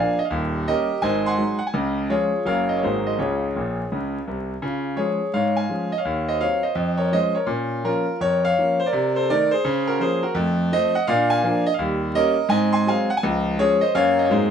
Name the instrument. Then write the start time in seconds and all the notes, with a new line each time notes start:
grand piano
Already playing: F3 A#3 D4 D5 F5 G#5
0.19 D#5
0.25 F5
0.30 D#1 D#2
0.67 G3 A#3 C#4 G4 A#4 D#5
1.02 G#1 G#2 C5 D#5 G#5
1.26 F#5 G#5 C6
1.37 F#3 G#3 D#4
1.58 F#5
1.67 G#5
1.74 C#2 C#3
2.09 F3 G#3 C#4 F4 G#4 C#5
2.45 F#1 F#2 F#3 A#3 C#4 A#4 C#5 F5
2.69 D#5
2.77 C#5
2.83 G#1 G#2 F#3 G#3 A#3 F#4 G#4 C5
3.06 D#5
3.19 C#2 C#3 F4 G#4 C#5
3.56 A#1 A#2
3.92 C#2 C#3
4.28 C2 C3
4.62 C#3 F4
4.96 F3 G#3 C#4 G#4 C#5
5.34 G#2 C#5 F5
5.56 F5 G#5
5.69 F3 G#3 C#4
5.92 D#5
5.98 C#5 F5
6.05 D#2
6.29 C5 D#5
6.40 F#3 C4 C#5 F5
6.63 C5 D#5
6.75 F2
6.97 A#4 C#5
7.12 F3 G#3 C#4 C5 D#5
7.35 A#4 C#5
7.46 A#2 C#4
7.84 F3 A#3 C#4 F4 A#4
8.21 F2 A#4 C#5
8.45 C#5 F5
8.58 F3 A#3 C#4
8.80 C5
8.86 A#4 D5
8.93 C3
9.16 A4 C5
9.29 D#3 A3 D#4 A#4 D5
9.51 G#4 C5
9.65 C#3
9.87 F#4 A#4
10.00 F3 A#3 C#4 G#4 C5
10.23 F#4 A#4
10.35 F2 A3
10.72 F3 A3 C4 C5 D#5
10.95 D#5 F#5
11.07 A#2 D4 D5 F5
11.30 F5 G#5
11.43 F3 A#3 D4
11.66 D#5
11.74 F5
11.79 D#2 G3
12.15 G3 A#3 C#4 A#4 D#5
12.49 G#2 C4 D#5 G#5
12.72 G#5 C6
12.87 F#3 G#3 C4 F5 G#5
13.10 F#5
13.17 G#5
13.23 C#2 F3
13.58 F3 G#3 C#4 G#4 C#5
13.81 C5 D#5
13.94 F#2 F#3 A#3 C#4 C#5 F5
14.19 D#5
14.25 C#5
14.30 G#2 F#3 G#3 A#3 C4 G#4 C5